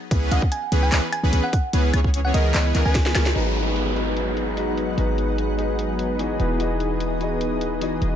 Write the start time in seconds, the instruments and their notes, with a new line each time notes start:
0.11 808-style bass C#2, supersaw synth E3 B3 C#4 G#4 B4, kick, closed hi-hat
0.31 808-style bass C#2, supersaw synth E3 B3 C#4 G#4 D#5, synth pluck F#5, closed hi-hat
0.42 kick
0.52 synth pluck G#5, closed hi-hat
0.72 808-style bass C#2, supersaw synth E3 B3 C#4 G#4 B4, closed hi-hat
0.83 synth pluck G#5
0.92 808-style bass C#2, supersaw synth E3 B3 C#4 G#4 B4, clap, closed hi-hat
1.12 synth pluck G#5, closed hi-hat, high woodblock
1.23 808-style bass C#2, supersaw synth E3 B3 C#4 G#4 B4
1.33 808-style bass C#2, supersaw synth E3 B3 C#4 G#4 B4, closed hi-hat
1.44 synth pluck F#5
1.53 synth pluck F#5, kick, closed hi-hat
1.73 808-style bass C#2, supersaw synth E3 B3 C#4 G#4 B4, closed hi-hat
1.94 808-style bass C#2, supersaw synth E3 B3 C#4 G#4 C#5, closed hi-hat, high woodblock
2.04 kick
2.14 closed hi-hat
2.25 synth pluck F#5
2.34 808-style bass C#2, supersaw synth E3 B3 C#4 G#4 A#4, synth pluck D#5, closed hi-hat
2.54 808-style bass C#2, supersaw synth E3 B3 C#4 G#4 B4, synth pluck D#5, clap, closed hi-hat
2.75 808-style bass C#2, supersaw synth E3 B3 C#4 G#4 A#4, clap, closed hi-hat
2.85 808-style bass C#2, supersaw synth E3 B3 C#4 G#4 B4, synth pluck G#5
2.95 kick, snare, closed hi-hat
3.06 snare
3.15 808-style bass C#2, supersaw synth E3 B3 C#4 G#4 A#4, snare, closed hi-hat, high woodblock
3.26 snare
3.33 808-style bass G#1, supersaw synth F#3 B3 D#4 G#4 B4, felt piano G#3 D#4 F#4 A#5, ambient pad G#4 D#5 F#5, closed hi-hat, crash, downlifter
3.37 felt piano B4
3.56 closed hi-hat
3.76 closed hi-hat
3.94 felt piano G#3 D#4 F#4 A#5, closed hi-hat
3.98 felt piano B4
4.17 closed hi-hat
4.37 closed hi-hat
4.56 felt piano G#3 D#4 F#4 B4 A#5, closed hi-hat
4.77 closed hi-hat
4.96 808-style bass G#1, felt piano G#3 D#4 F#4 B4 A#5, closed hi-hat
5.18 closed hi-hat
5.38 closed hi-hat
5.57 felt piano G#3 D#4 F#4 A#5, closed hi-hat
5.61 felt piano B4
5.79 closed hi-hat
5.99 closed hi-hat
6.18 felt piano E3 B3 F#4 G#4 D#5, closed hi-hat
6.40 808-style bass E1, supersaw synth E3 B3 D#4 G#4 B4, closed hi-hat
6.58 felt piano E3 B3 F#4 G#4, closed hi-hat
6.62 felt piano D#5
6.80 closed hi-hat
7.00 closed hi-hat
7.19 felt piano E3 B3 F#4 G#4, closed hi-hat
7.23 felt piano D#5
7.41 closed hi-hat
7.61 closed hi-hat
7.80 felt piano E3 B3 F#4 G#4 D#5, closed hi-hat
8.02 808-style bass E1, closed hi-hat